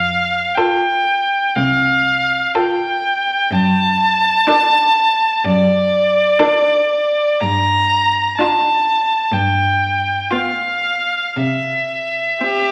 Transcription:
Already playing: F2 F5
0.54 F4 A4 G5
1.55 C2 F5
2.55 F4 A4 G5
3.51 F#2 A5
4.48 D4 A4
5.44 F#2 D5
6.39 D4 A4
7.40 G2 A#5
8.37 D4 F4 A5
9.32 G2 G5
10.31 B3 F4 F5
11.37 C3 E5
12.41 C4 G4

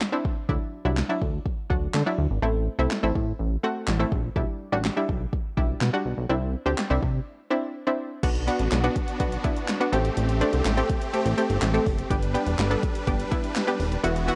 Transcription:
0.00 snare, clap
0.12 C4 D4 E4
0.25 kick
0.49 D2 F#3 D4 E4, kick
0.85 C2 F#3 D4 E4
0.97 snare, clap
1.09 F#3 D4 E4
1.22 D2, kick
1.46 kick
1.70 D2 F#3 D4 F#4, kick
1.94 D3, snare, clap
2.06 F#3 D4 E4
2.18 D2
2.30 G#1
2.42 A1 A3 C4 E4
2.79 C2 A3 C4 E4
2.91 snare, clap
3.03 A1 A3 C4 E4
3.15 A2, kick
3.39 A1
3.63 A3 C4 F#4
3.87 A1, snare, clap
4.00 A3 C4 E4
4.12 A#1, kick
4.36 B1 G3 D4 E4, kick
4.72 A1 G3 D4 F#4
4.84 snare, clap
4.97 G3 D4 E4
5.09 B1, kick
5.33 kick
5.57 B1 G3 D4 E4, kick
5.81 B2, snare, clap
5.93 G3 D4 F#4
6.05 B1
6.18 B1
6.30 C2 C4 D4 E4
6.66 D2 C4 D4 G4
6.78 snare, clap
6.90 C2 C4 D4 E4
7.02 C3, kick
7.51 C4 D4 E4
7.87 C4 D4 E4
8.23 B1 B3 D4 F#4, kick, closed hi-hat, crash
8.35 closed hi-hat
8.47 B3 D4 F#4, closed hi-hat
8.59 A1, closed hi-hat
8.71 B1, snare, clap, closed hi-hat
8.84 B3 D4 F#4, closed hi-hat
8.96 kick, closed hi-hat
9.08 closed hi-hat
9.20 B1 B3 D4 F#4, kick, closed hi-hat
9.32 closed hi-hat
9.44 B3 D4 E4, kick, closed hi-hat
9.56 closed hi-hat
9.68 snare, clap, closed hi-hat
9.80 B3 D4 F#4, closed hi-hat
9.93 A1 A3 C4 G4, closed hi-hat
10.05 closed hi-hat
10.17 A1, closed hi-hat
10.29 closed hi-hat
10.41 A3 C4 D4, closed hi-hat
10.53 C2, closed hi-hat
10.65 A1, snare, clap, closed hi-hat
10.77 A3 C4 G4, closed hi-hat
10.89 kick, closed hi-hat
11.01 closed hi-hat
11.13 A3 C4 G4, closed hi-hat
11.26 A1, closed hi-hat
11.38 A3 C4 G4, closed hi-hat
11.50 G1, closed hi-hat
11.62 A1, snare, clap, closed hi-hat
11.74 A3 C4 G4, closed hi-hat
11.86 F#1, kick, open hi-hat
11.98 closed hi-hat
12.10 G1 G3 B3 D4 G4 B4, kick, closed hi-hat
12.22 closed hi-hat
12.34 B3 D4 G4, closed hi-hat
12.47 E1, closed hi-hat
12.59 G1, snare, clap, closed hi-hat
12.71 B3 D4 A4, closed hi-hat
12.83 kick, closed hi-hat
12.95 closed hi-hat
13.07 G1 B3 D4 G4, kick, closed hi-hat
13.19 closed hi-hat
13.31 B3 D4 E4, kick, closed hi-hat
13.44 closed hi-hat
13.55 snare, clap, closed hi-hat
13.67 B3 D4 G4, closed hi-hat
13.80 D#1, open hi-hat
13.92 closed hi-hat
14.04 E1 E3 B3 E4 F#4, closed hi-hat
14.16 closed hi-hat
14.28 B3 E4 F#4, closed hi-hat

